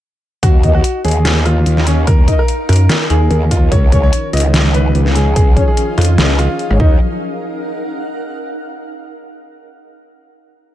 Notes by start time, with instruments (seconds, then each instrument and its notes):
0.43 wobble bass D#2, ambient pad D#4, grand piano F#4, kick, closed hi-hat
0.63 wobble bass D#2, brass ensemble D#4 A#4 D#5, kick, closed hi-hat
0.74 grand piano F#4
0.84 ambient pad F5, closed hi-hat
1.04 wobble bass D#2, grand piano G#4, closed hi-hat
1.08 closed hi-hat
1.11 closed hi-hat
1.17 ambient pad A#4
1.25 snare, closed hi-hat
1.46 grand piano F4, closed hi-hat
1.66 wobble bass D#2, closed hi-hat
1.77 snare
1.87 grand piano C#4, closed hi-hat
2.07 wobble bass D#2, grand piano A#4, kick, closed hi-hat
2.28 brass ensemble D#4 A#4 D#5, kick, closed hi-hat
2.39 grand piano A#4
2.48 closed hi-hat
2.69 wobble bass F#2, grand piano A#4, closed hi-hat
2.73 closed hi-hat
2.76 closed hi-hat
2.89 snare, closed hi-hat
3.10 wobble bass D#2, grand piano G#4, closed hi-hat
3.31 wobble bass D#2, closed hi-hat
3.51 grand piano F4, kick, closed hi-hat
3.72 wobble bass C#2, analog synth pad D#3 F3 C#4, ambient pad C#4, grand piano C#5, kick, closed hi-hat
3.92 wobble bass C#2, brass ensemble C#4 G#4 C#5, ambient pad G#4, kick, closed hi-hat
4.03 grand piano C#5
4.13 closed hi-hat
4.33 wobble bass C#2, grand piano D#5, closed hi-hat
4.37 closed hi-hat
4.40 closed hi-hat
4.49 ambient pad D#5
4.54 snare, closed hi-hat
4.74 grand piano B4, closed hi-hat
4.95 wobble bass C#2, ambient pad F5, closed hi-hat
5.06 snare
5.16 grand piano G#4, closed hi-hat
5.36 wobble bass C#2, grand piano G#4, kick, closed hi-hat
5.57 brass ensemble C#4 G#4 C#5, kick, closed hi-hat
5.68 grand piano G#4
5.77 closed hi-hat
5.98 wobble bass F2, grand piano F4, closed hi-hat
6.01 closed hi-hat
6.05 closed hi-hat
6.18 wobble bass C#2, snare, closed hi-hat
6.39 grand piano F4, closed hi-hat
6.59 closed hi-hat
6.70 wobble bass G#1, brass ensemble C#4 G#4 C#5
6.80 wobble bass D#2, analog synth pad F3 F#3 D#4, ambient pad D#4, grand piano D#4, brass ensemble D#4 A#4 D#5, kick
6.87 ambient pad A#4
7.13 ambient pad F5
7.19 ambient pad F#5